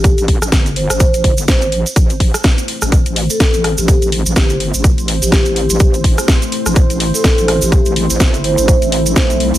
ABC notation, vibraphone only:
X:1
M:4/4
L:1/16
Q:"Swing 16ths" 1/4=125
K:Am
V:1 name="Vibraphone"
G z4 z c2 c c z2 c c z2 | z8 z3 A3 z G | G z3 G z6 G G z G G | z8 z3 A3 z G |
G z4 z c2 c c z2 c c z2 |]